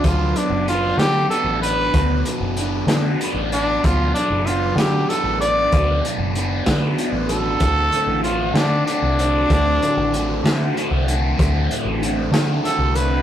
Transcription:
<<
  \new Staff \with { instrumentName = "Trumpet" } { \time 6/8 \key b \phrygian \tempo 4. = 63 f'8 d'8 f'8 g'8 a'8 b'8~ | b'8 r2 d'8 | f'8 d'8 f'8 g'8 a'8 d''8~ | d''8 r2 a'8~ |
a'4 f'8 d'8 d'4~ | d'2 r4 | r2 a'8 b'8 | }
  \new Staff \with { instrumentName = "Overdriven electric guitar" } { \time 6/8 \key b \phrygian <b, fis b d' fis' b'>8 <b d' fis' b'>8 <b d' fis' b'>8 <b d' fis' b'>8 <b d' fis' b'>8 <b d' fis' b'>8 | <b, fis b d' fis' b'>8 <b d' fis' b'>8 <b d' fis' b'>8 <b d' fis' b'>8 <b d' fis' b'>8 <b d' fis' b'>8 | <b, fis b d' fis' b'>8 <b d' fis' b'>8 <b d' fis' b'>8 <b d' fis' b'>8 <b d' fis' b'>8 <b d' fis' b'>8 | <b, fis b d' fis' b'>8 <b d' fis' b'>8 <b d' fis' b'>8 <b d' fis' b'>8 <b d' fis' b'>8 <b d' fis' b'>8 |
<d, a, d a c' fis'>8 <d a c' fis'>8 <d a c' fis'>8 <d a c' fis'>8 <d a c' fis'>8 <d a c' fis'>8 | <d, a, d a c' fis'>8 <d a c' fis'>8 <d a c' fis'>8 <d a c' fis'>8 <d a c' fis'>8 <d a c' fis'>8 | <d, a, d a c' fis'>8 <d a c' fis'>8 <d a c' fis'>8 <d a c' fis'>8 <d a c' fis'>8 <d a c' fis'>8 | }
  \new Staff \with { instrumentName = "Picked electric bass" } { \clef bass \time 6/8 \key b \phrygian d,8 r16 fis,,8. d8 r16 a,,8. | d,8 r16 fis,,8. d8 r16 a,,8. | d,8 r16 fis,,8. d8 r16 a,,8. | d,8 r16 fis,,8. d8 r16 a,,8. |
d,8 r16 a,,8. d8 r16 c,8. | d,8 r16 a,,8. d8 r16 c,8. | d,8 r16 a,,8. d8 r16 c,8. | }
  \new DrumStaff \with { instrumentName = "Drums" } \drummode { \time 6/8 <hh bd>8 hh8 hh8 <hh sn>8 hh8 hh8 | <hh bd>8 hh8 hh8 <hh sn>8 hh8 hh8 | <hh bd>8 hh8 hh8 <hh sn>8 hh8 hh8 | <hh bd>8 hh8 hh8 <hh bd sn>8 hh8 hh8 |
<hh bd>8 hh8 hh8 <hh sn>8 hh8 hh8 | <hh bd>8 hh8 hh8 <hh sn>8 hh8 hh8 | <hh bd>8 hh8 hh8 <hh sn>8 hh8 hh8 | }
>>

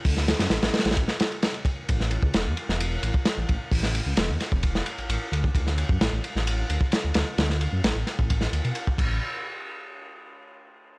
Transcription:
<<
  \new Staff \with { instrumentName = "Detuned saw bass" } { \clef bass \time 4/4 \key d \lydian \tempo 4 = 131 d,8. fis,16 a,,16 a,,16 r16 a,,16 a,,16 r4. r16 | a,,8. cis,16 e,,16 e,16 r16 e,,8. a,,16 r8 a,,16 a,,16 r16 | a,,8. cis,16 e,,16 e,16 r16 e,,8. r16 a,,16 a,,16 r16 d,16 r16 | d,8. fis,16 a,,16 a,,16 r16 a,,8. d,16 r8 d,16 d,16 r16 |
d,8. fis,16 a,,16 a,,16 r16 a,,8. d,16 b,16 r8 a,,8 | r1 | }
  \new DrumStaff \with { instrumentName = "Drums" } \drummode { \time 4/4 <hho bd>16 sn16 <cymr sn>16 <cymr sn>16 <cymr sn>16 <cymr sn>16 <cymr sn>32 <cymr sn>32 <cymr sn>32 <cymr sn>32 <bd cymr>16 sn16 <cymr sn>16 cymr16 <cymr sn>16 cymr16 <bd cymr>8 | <bd cymr>16 sn16 cymr16 bd16 <cymr sn>8 cymr16 sn16 cymr8 cymr16 bd16 <cymr sn>8 <bd cymr>8 | <hho bd>16 sn16 cymr8 <cymr sn>8 <cymr sn>16 bd16 <bd cymr>16 sn16 cymr16 cymr16 cymr8 cymr16 bd16 | <bd cymr>16 sn16 cymr16 bd16 <cymr sn>8 cymr16 sn16 cymr8 cymr16 bd16 <cymr sn>8 <cymr sn>8 |
<cymr sn>16 sn16 cymr8 <cymr sn>8 <cymr sn>16 bd16 <bd cymr>16 sn16 cymr16 cymr16 cymr16 bd16 <cymc bd>8 | r4 r4 r4 r4 | }
>>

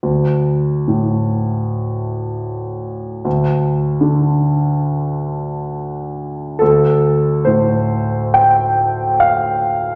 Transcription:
<<
  \new Staff \with { instrumentName = "Grand piano" } { \time 4/4 \key d \minor \tempo 4 = 73 r1 | r1 | a'4 c''4 g''4 f''4 | }
  \new Staff \with { instrumentName = "Grand piano" } { \clef bass \time 4/4 \key d \minor d,4 a,2. | d,4 d2. | d,4 a,2. | }
>>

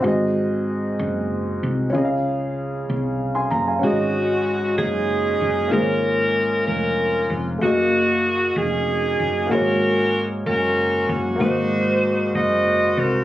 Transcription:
<<
  \new Staff \with { instrumentName = "Upright piano" } { \time 6/8 \key aes \mixolydian \tempo 4. = 63 << { r2. | r2 r16 <aes'' c'''>16 bes''16 <f'' aes''>16~ | <f'' aes''>16 r2 r8. | r2. |
r2. | r2. | r2. | } \\ { <c' ges' aes' ees''>2. | <des' f' aes' ees'' f''>2. | <des' ges' aes' ees''>2. | <bes f' aes' c'' des''>2. |
<a bes ges' aes' ees''>2. | <bes ges' aes' des''>2. | <bes ges' aes' c''>2. | } >> }
  \new Staff \with { instrumentName = "Upright piano" } { \clef bass \time 6/8 \key aes \mixolydian aes,4. r4. | des4. r4. | aes,4. r4. | aes,4. r4. |
r2. | aes,4. r4. | aes,4. r4. | }
  \new Staff \with { instrumentName = "Saxophone section" } { \time 6/8 \key aes \mixolydian << { r2. | r2. | ges'4. aes'4. | bes'4. bes'4 r8 |
ges'4. aes'4. | bes'4. bes'4 r8 | c''4. ees''4 bes'8 | } \\ { r2. | r2. | <des' ees'>4. <des' ees'>4. | <des' f'>4. <des' f'>4. |
<bes ees'>4. <des' ees'>4. | <des' ges'>4. <des' ges'>4. | <ees' ges'>4. <ges' c''>4. | } >> }
  \new Staff \with { instrumentName = "Fingered electric bass" } { \clef bass \time 6/8 \key aes \mixolydian aes,,4. ges,,4 c,8 | des,4. c,4 ges,,8 | aes,,4. ges,,4 ges,,8 | aes,,4. f,,4 f,,8 |
ges,,4. f,,4 ges,,8 | aes,,4. ges,,4 ges,,8 | aes,,4. ges,,4 c,8 | }
>>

